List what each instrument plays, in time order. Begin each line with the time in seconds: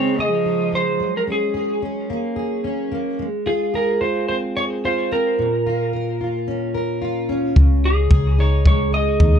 Already playing: steel-string acoustic guitar C#3 G#3 D#4 G#4, cello C4, electric slide guitar C#5
0.18 cello G#3, steel-string acoustic guitar G#4, electric slide guitar D#5
0.32 cello F3
0.45 steel-string acoustic guitar D#4
0.72 steel-string acoustic guitar G#3, electric slide guitar C5
1.00 steel-string acoustic guitar F#3
1.17 electric slide guitar A#4
1.27 steel-string acoustic guitar C#4
1.32 electric slide guitar G#4
1.54 steel-string acoustic guitar G#4
1.82 steel-string acoustic guitar C#4
2.10 steel-string acoustic guitar A#3
2.36 steel-string acoustic guitar G#4
2.64 steel-string acoustic guitar C#4
2.92 steel-string acoustic guitar A#3
3.19 steel-string acoustic guitar G#3
3.46 steel-string acoustic guitar F4, electric slide guitar G#4
3.74 steel-string acoustic guitar G#4, electric slide guitar A#4
4.01 steel-string acoustic guitar F4, electric slide guitar C5
4.28 steel-string acoustic guitar C4, electric slide guitar C5
4.56 steel-string acoustic guitar G#4, electric slide guitar C#5
4.85 steel-string acoustic guitar F4, electric slide guitar C5
5.12 steel-string acoustic guitar C4, electric slide guitar A#4
5.39 steel-string acoustic guitar A#2
5.66 steel-string acoustic guitar F4
5.93 steel-string acoustic guitar A#4
6.21 steel-string acoustic guitar F4
6.48 steel-string acoustic guitar C#4
6.74 steel-string acoustic guitar A#4
7.02 steel-string acoustic guitar F4
7.29 steel-string acoustic guitar C#4
7.56 fingered electric bass C#2, steel-string acoustic guitar C#3, kick
7.84 steel-string acoustic guitar D#4, electric slide guitar G#4
8.11 fingered electric bass C#2, steel-string acoustic guitar G#4, kick
8.39 steel-string acoustic guitar D#4, electric slide guitar C#5
8.66 steel-string acoustic guitar G#3, electric slide guitar C#5, kick
8.93 steel-string acoustic guitar G#4, electric slide guitar D#5
9.20 fingered electric bass D#2, steel-string acoustic guitar D#4, kick